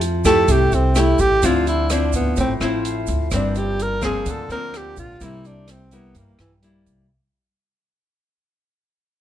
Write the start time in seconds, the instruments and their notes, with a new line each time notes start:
Already playing: upright bass F2, nylon-string guitar F3
0.01 closed hi-hat
0.25 nylon-string guitar A3 E4 G4, tenor saxophone A4, kick, cross-stick, closed hi-hat, shaker
0.48 upright bass C2, nylon-string guitar C3, tenor saxophone G4, kick, closed hi-hat, shaker
0.72 upright bass C2, tenor saxophone C4, closed hi-hat, shaker
0.95 nylon-string guitar A3 E4 G4, cross-stick, closed hi-hat, shaker
0.99 tenor saxophone E4
1.19 upright bass A1, tenor saxophone G4, kick, closed hi-hat, shaker
1.42 upright bass D2, nylon-string guitar D3 F3 C4 E4, tenor saxophone F4, kick, closed hi-hat, shaker
1.67 tenor saxophone E4, closed hi-hat, shaker
1.90 nylon-string guitar F3 C4 E4, tenor saxophone D4, cross-stick, closed hi-hat, shaker
2.13 tenor saxophone B3, kick, closed hi-hat, shaker
2.36 upright bass A1, nylon-string guitar A2, kick, closed hi-hat, shaker
2.41 tenor saxophone C4
2.60 upright bass A1, nylon-string guitar F3 C4 E4, cross-stick, closed hi-hat, shaker
2.85 closed hi-hat
3.07 upright bass D2, kick, closed hi-hat, shaker
3.31 upright bass G1, nylon-string guitar G2 F3 A#3 C4, kick, cross-stick, closed hi-hat, shaker
3.35 tenor saxophone D4
3.55 tenor saxophone G4, closed hi-hat, shaker
3.79 tenor saxophone A#4, closed hi-hat
4.01 nylon-string guitar F3 A#3 C4, tenor saxophone G#4, kick, cross-stick, closed hi-hat, shaker
4.26 upright bass D2, nylon-string guitar D3, kick, closed hi-hat, shaker
4.30 tenor saxophone A4
4.48 upright bass D2, nylon-string guitar F3 A#3 C4, tenor saxophone A#4, closed hi-hat, shaker
4.74 tenor saxophone G4, cross-stick, closed hi-hat
4.97 upright bass A#1, tenor saxophone F4, kick, closed hi-hat, shaker
5.20 upright bass C2, nylon-string guitar C3 G3 A#3 E4, tenor saxophone E4, kick, closed hi-hat, shaker
5.45 tenor saxophone D4, closed hi-hat, shaker
5.68 tenor saxophone C4, cross-stick, closed hi-hat, shaker
5.91 nylon-string guitar G3 A#3 E4, tenor saxophone B3, closed hi-hat, shaker
6.15 nylon-string guitar G2, upright bass G2, tenor saxophone A#3, kick, closed hi-hat, shaker
6.39 upright bass G2, tenor saxophone E3, cross-stick, closed hi-hat, shaker
6.62 nylon-string guitar G3 A#3 E4, closed hi-hat
6.86 upright bass C2, closed hi-hat, shaker